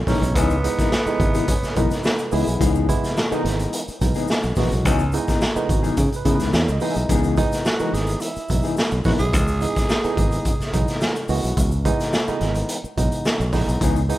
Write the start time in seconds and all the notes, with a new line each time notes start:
0.07 A#1 E3 G#3 B3 C#4 D#4 A#4, kick, snare, open hi-hat, shaker
0.22 B1, muted clean electric guitar stroke, closed hi-hat, shaker
0.35 C#2 E3 B3 D#4 G#4, kick, closed hi-hat, shaker
0.50 closed hi-hat, shaker
0.64 E3 G#3 B3 D#4, muted clean electric guitar stroke, closed hi-hat, shaker
0.79 E3 B3 D#4 A#4, kick, snare, closed hi-hat, shaker
0.92 muted clean electric guitar stroke, snare, shaker
1.06 E3 G#3 B3 D#4, muted fingered electric bass stroke, muted clean electric guitar stroke, closed hi-hat, shaker
1.20 G#1 E5, kick, closed hi-hat
1.34 E3 B3 D#4 G#4, closed hi-hat, shaker
1.48 C#5, muted clean electric guitar stroke, kick, closed hi-hat, shaker
1.63 muted fingered electric bass stroke, snare, closed hi-hat, shaker
1.75 B1 E3 G#3 B3 D#4 A#4, kick, closed hi-hat, shaker
1.91 muted clean electric guitar stroke, snare, closed hi-hat, shaker
2.04 B4, muted clean electric guitar stroke, snare, shaker
2.18 closed hi-hat, shaker
2.32 C#2 E3 G#3 B3 D#4 E4 G#4, open hi-hat, shaker
2.46 B1, muted clean electric guitar stroke, closed hi-hat, shaker
2.59 C#2 E3 B3 D#4 G#4, kick, closed hi-hat, shaker
2.75 shaker
2.88 E3 G#3 B3 E4, kick, closed hi-hat, shaker
3.02 muted clean electric guitar stroke, snare, closed hi-hat, shaker
3.15 muted clean electric guitar stroke, snare, shaker
3.31 E3 G#3 B3 D#4 A#4, muted fingered electric bass stroke, closed hi-hat, shaker
3.45 G#1, muted clean electric guitar stroke, snare, closed hi-hat
3.59 muted clean electric guitar stroke, closed hi-hat, shaker
3.72 muted clean electric guitar stroke, closed hi-hat, shaker
3.87 muted clean electric guitar stroke, muted fingered electric bass stroke, closed hi-hat, shaker
4.01 B1 E3 G#3 B3 D#4, kick, closed hi-hat, shaker
4.14 E3 B3 D#4 G#4, closed hi-hat, shaker
4.28 muted clean electric guitar stroke, snare, shaker
4.43 B1, closed hi-hat, shaker
4.56 A#1 E3 G#3 B3 D#4 F#4 A#4, kick, snare, open hi-hat, shaker
4.71 B1, muted clean electric guitar stroke, closed hi-hat, shaker
4.85 C#2 E3 B3 D#4 G#4, kick, closed hi-hat, shaker
4.99 closed hi-hat, shaker
5.12 E3 G#3 B3 D#4, muted clean electric guitar stroke, closed hi-hat, shaker
5.27 E3 B3 D#4 A#4, kick, snare, closed hi-hat, shaker
5.40 muted clean electric guitar stroke, snare, shaker
5.55 E3 G#3 B3 D#4, muted clean electric guitar stroke, muted fingered electric bass stroke, shaker
5.69 G#1 F#4, kick, closed hi-hat, shaker
5.83 E3 B3 D#4 G#4, closed hi-hat, shaker
5.97 C#3 G#4, kick, closed hi-hat, shaker
6.11 muted clean electric guitar stroke, closed hi-hat, shaker
6.16 B4
6.25 C#3 E3 G#3 B3 D#4 E4 A#4, kick, closed hi-hat, shaker
6.35 B4
6.39 C#2 E3 B3 D#4 G#4, snare, closed hi-hat, shaker
6.53 E2 C#5, muted clean electric guitar stroke, snare, shaker
6.68 C#2, closed hi-hat, shaker
6.72 D#5
6.80 E3 G#3 B3 D#4 G#4, open hi-hat, shaker
6.91 E5
6.96 B1, muted clean electric guitar stroke, closed hi-hat, shaker
7.09 C#2 E3 B3 D#4 G#4, kick, closed hi-hat, shaker
7.24 closed hi-hat, shaker
7.37 E3 G#3 B3 D#4, kick, closed hi-hat, shaker
7.52 muted clean electric guitar stroke, snare, closed hi-hat, shaker
7.65 F#4, muted clean electric guitar stroke, snare, shaker
7.79 E3 G#3 B3 D#4 A#4, muted fingered electric bass stroke, closed hi-hat, shaker
7.93 G#1 G#4, muted clean electric guitar stroke, snare, closed hi-hat
8.07 muted clean electric guitar stroke, closed hi-hat, shaker
8.20 E4, muted clean electric guitar stroke, closed hi-hat, shaker
8.36 muted clean electric guitar stroke, muted fingered electric bass stroke, closed hi-hat, shaker
8.48 B1 E3 G#3 B3 D#4, kick, closed hi-hat, shaker
8.63 E3 B3 D#4 G#4, closed hi-hat, shaker
8.76 muted clean electric guitar stroke, snare, shaker
8.91 B1, closed hi-hat, shaker
9.04 A#1 E3 G#3 B3 D#4 E4 F#4 A#4, kick, snare, open hi-hat, shaker
9.19 B1 G#4, muted clean electric guitar stroke, closed hi-hat, shaker
9.33 C#2, kick, closed hi-hat, shaker
9.47 closed hi-hat, shaker
9.61 E3 G#3 B3 D#4, closed hi-hat, shaker
9.76 kick, snare, closed hi-hat, shaker
9.89 snare, shaker
10.04 E3 G#3 B3 D#4, muted fingered electric bass stroke, closed hi-hat, shaker
10.17 G#1, kick, closed hi-hat
10.31 closed hi-hat, shaker
10.45 kick, closed hi-hat, shaker
10.60 muted fingered electric bass stroke, snare, closed hi-hat, shaker
10.73 B1 E3 G#3 B3 D#4, kick, closed hi-hat, shaker
10.88 snare, closed hi-hat, shaker
11.01 snare, shaker
11.16 closed hi-hat, shaker
11.28 C#2 E3 G#3 B3 F#4, open hi-hat, shaker
11.44 B1, closed hi-hat, shaker
11.57 C#2, kick, closed hi-hat, shaker
11.72 closed hi-hat, shaker
11.85 E3 G#3 B3 D#4, kick, closed hi-hat, shaker
12.00 snare, closed hi-hat, shaker
12.13 snare, shaker
12.28 E3 G#3 B3 D#4, muted fingered electric bass stroke, closed hi-hat, shaker
12.41 G#1, snare, closed hi-hat
12.55 closed hi-hat, shaker
12.69 closed hi-hat, shaker
12.84 muted fingered electric bass stroke, shaker
12.97 B1 E3 G#3 B3 D#4, kick, closed hi-hat, shaker
13.12 closed hi-hat, shaker
13.25 snare, shaker
13.40 B1, closed hi-hat, shaker
13.53 A#1 E3 G#3 B3 D#4, kick, snare, open hi-hat, shaker
13.68 B1, closed hi-hat, shaker
13.80 C#2 E3 B3 D#4 G#4, kick, closed hi-hat, shaker
13.96 closed hi-hat, shaker
14.09 E3 G#3 B3 D#4, muted clean electric guitar stroke, closed hi-hat, shaker